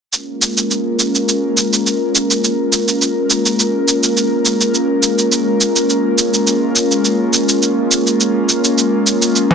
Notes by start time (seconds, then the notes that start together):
0.12 G#3 A#3 C#4 F4 A#4, cabasa
0.42 cabasa
0.58 cabasa
0.71 cabasa
1.00 cabasa
1.15 cabasa
1.29 cabasa
1.58 cabasa
1.73 cabasa
1.87 cabasa
2.16 cabasa
2.31 cabasa
2.44 cabasa
2.73 cabasa
2.88 cabasa
3.02 cabasa
3.30 cabasa
3.46 cabasa
3.60 cabasa
3.88 cabasa
4.03 cabasa
4.17 cabasa
4.46 cabasa
4.61 cabasa
4.75 cabasa
5.03 cabasa
5.19 cabasa
5.32 cabasa
5.61 cabasa
5.76 cabasa
5.90 cabasa
6.19 cabasa
6.34 cabasa
6.47 cabasa
6.76 cabasa
6.91 cabasa
7.05 cabasa
7.34 cabasa
7.49 cabasa
7.63 cabasa
7.92 cabasa
8.07 cabasa
8.21 cabasa
8.49 cabasa
8.65 cabasa
8.78 cabasa
9.07 cabasa
9.22 cabasa
9.36 G#4, cabasa
9.51 mid tom